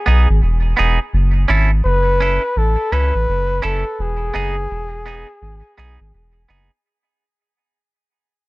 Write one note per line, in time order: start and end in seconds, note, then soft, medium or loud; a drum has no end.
0.00 0.42 G#4 loud
0.06 0.27 B1 loud
0.06 0.27 B3 medium
0.06 0.27 D#4 medium
0.06 0.28 G#4 medium
0.30 0.41 G#1 medium
0.43 0.74 E1 loud
0.77 0.99 E1 medium
0.77 0.98 B3 medium
0.77 0.99 D#4 medium
0.77 0.99 G#4 medium
1.13 1.46 F#1 loud
1.48 1.81 G#1 medium
1.48 1.69 C#4 medium
1.48 1.70 E4 loud
1.48 1.70 A4 medium
1.85 2.39 F#1 loud
1.85 2.60 B4 loud
2.20 2.41 C#4 medium
2.20 2.42 E4 medium
2.20 2.42 A4 medium
2.44 muted clean electric guitar stroke soft
2.56 2.77 A1 medium
2.56 2.94 A4 medium
2.92 3.12 C#2 loud
2.92 3.13 C#4 medium
2.92 3.13 E4 loud
2.92 3.14 A4 loud
2.92 3.64 B4 loud
3.15 3.26 A1 medium
3.29 3.60 F#1 loud
3.62 3.84 F#1 medium
3.62 3.83 C#4 medium
3.62 3.84 E4 medium
3.62 3.84 A4 loud
3.62 4.03 A4 medium
3.99 4.31 E1 loud
3.99 6.50 G#4 medium
4.34 4.67 F#1 medium
4.34 4.55 B3 medium
4.34 4.55 D#4 medium
4.34 4.56 G#4 loud
4.71 5.25 E1 loud
5.06 5.27 B3 medium
5.06 5.27 D#4 medium
5.06 5.27 G#4 medium
5.29 muted clean electric guitar stroke soft
5.42 5.62 G#1 medium
5.78 5.98 B1 medium
5.78 5.98 B3 medium
5.78 5.99 D#4 medium
5.78 5.99 G#4 medium
6.00 6.12 G#1 medium
6.14 6.46 E1 medium
6.49 6.70 F#1 medium
6.49 6.70 B3 medium
6.49 6.70 D#4 medium
6.49 6.70 G#4 medium